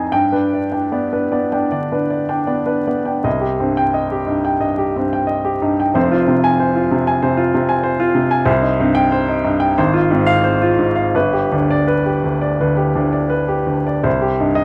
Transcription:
Already playing: F2 C4 D#4 C5 D#5 G#5
0.12 G2 G5
0.32 D4 B4
0.53 D5
0.72 D4 G5
0.92 B3 D5
1.13 D4 B4
1.32 B3 D5
1.52 D4 G5
1.72 D3 D5
1.92 D4 B4
2.10 D5
2.29 D4 G5
2.47 B3 D5
2.66 D4 B4
2.87 B3 D5
3.05 D4 G5
3.24 C2 D#5
3.41 G4
3.60 G2 C4
3.77 G5
3.94 D#5
4.12 G4
4.27 G2 D#4
4.45 G5
4.61 G2 D#5
4.78 G4
4.96 G2 C4
5.13 G5
5.27 D#5
5.45 G4
5.62 G2 D#4
5.80 G5
5.94 F1 F2 C5
6.12 F4
6.28 C3 C4
6.44 G#5
6.60 C5
6.76 F4
6.91 C3
7.07 G#5
7.22 C3 C5
7.37 F4
7.54 C3 C4
7.69 G#5
7.84 C5
8.00 F4
8.15 C3
8.31 G#5
8.45 C2 C5
8.62 D#4
8.80 G2 C4
8.95 G5
9.12 C5
9.28 D#4
9.45 G2 D#4
9.60 G5
9.78 G#1 C5
9.94 F4
10.11 G#2 C4
10.26 F5
10.44 C5
10.62 F4
10.79 G#2
10.95 F5
11.15 G1 B4
11.33 G4
11.52 D2 D4
11.71 D5
11.88 B4
12.06 G4
12.24 D2
12.41 D5
12.60 D2 B4
12.77 G4
12.95 D2 D4
13.13 D5
13.30 B4
13.48 G4
13.67 D2
13.87 D5
14.04 C2 C5
14.22 G4
14.40 G2 D#4
14.55 D#5

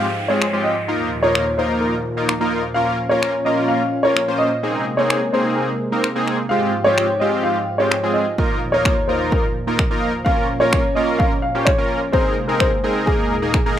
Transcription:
Already playing: G#2 F3 G4 F5, downlifter
0.28 G#3 C4 F4 G#4 C#5
0.42 finger snap
0.53 G#3 C4 F4 G4
0.64 D#5
0.88 D#2 A#2 A#3 D#4 F4 A#4
1.23 A#3 D#4 F4 A#4 C#5
1.35 finger snap
1.58 A#3 D#4 F4 A#4 C5
1.81 A#4
2.17 A#3 D#4 F4 A#4
2.29 finger snap
2.41 A#3 D#4 F4 A#4
2.74 A#3 C#4 F4 A#4 F5
3.09 A#3 C#4 F4 A#4 C#5
3.23 finger snap
3.45 A#3 C#4 F4 A#4 D#5
3.68 F5
4.03 A#3 C#4 F4 A#4 C#5
4.17 finger snap
4.28 A#3 C#4 F4 C5
4.38 D#5
4.63 C3 G#3 A#3 C4 D#4 G#4
4.97 A#3 C4 D#4 G#4 C#5
5.10 finger snap
5.32 A#3 C4 D#4 G#4 C5
5.56 A#4
5.92 A#3 C4 D#4 A#4
6.04 finger snap
6.16 A#3 C4 D#4 G#4
6.28 finger snap
6.49 G#2 F3 G#3 C4 F4 G4 F5
6.84 G#3 C4 F4 G4 C#5
6.98 finger snap
7.20 G#3 C4 F4 G4 D#5
7.43 F5
7.78 G#3 C4 F4 G4 C#5
7.92 finger snap
8.03 G#3 C4 F4 G#4
8.13 D#5
8.38 D#2 A#2 A#3 D#4 F4 A#4, kick
8.72 A#3 D#4 F4 A#4 C#5
8.85 finger snap, kick
9.08 A#3 D#4 F4 A#4 C5
9.31 A#4, kick
9.67 A#3 D#4 F4 A#4
9.79 finger snap, kick
9.91 A#3 D#4 F4 A#4
10.25 A#3 C#4 F4 A#4 F5, kick
10.60 A#3 C#4 F4 A#4 C#5
10.73 finger snap, kick
10.95 A#3 C#4 F4 A#4 D#5
11.18 F5, kick
11.42 F5
11.55 A#3 C#4 F4 G4
11.65 C#5, finger snap, kick
11.78 A#3 C#4 F4 A#4
12.12 C3 G#3 A#3 C4 D#4 G#4 A#4 C5, kick
12.48 C4 D#4 G#4 A#4
12.59 C5, finger snap, kick
12.84 C4 D#4 G#4 A#4
13.06 D#2 A#2 A#3 D#4 G#4 A#4, kick
13.42 A#3 D#4 G#4 A#4
13.54 finger snap, kick
13.66 A#3 D#4 G#4 A#4

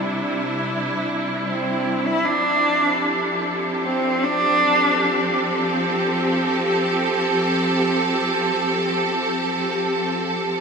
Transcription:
Already playing: C3 G3 D4 E4
1.47 C4
2.07 E4
2.25 F3 D4
2.49 C4
2.62 G4
2.86 A4
3.83 C4
4.23 D4

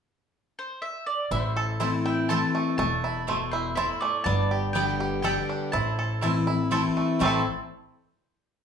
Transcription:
0.59 C5
0.82 E5
1.06 D5
1.31 A1 A2 E4 C5 E5
1.56 A4
1.80 E3 A3 C4 E4 C5 A5
2.06 E4 G5
2.29 E3 A3 C4 E4 A4 C5 A5
2.55 A3
2.78 E1 E2 A3 A5
3.04 E4
3.27 B2 A3 E4 C5 A5
3.51 E4 C5
3.75 A2 A3 E4 C5 E5 A5
4.01 A3 D5
4.24 G1 G2 B3 D5 A5
4.51 G4
4.73 D3 G3 B3 G4 D5 G5
5.00 G4
5.22 D3 G3 B3 G4 A4 D5 G5
5.49 D4
5.72 A1 A2 E4 C5 A5
5.99 A4
6.21 E3 A3 C4 E4 C5 A5
6.47 C4 E4
6.71 E3 A3 C4 E4 A4 C5 A5
6.97 A3
7.19 A1 A2 E3 A3 C4 E4 C5 A5
7.25 E4 A4

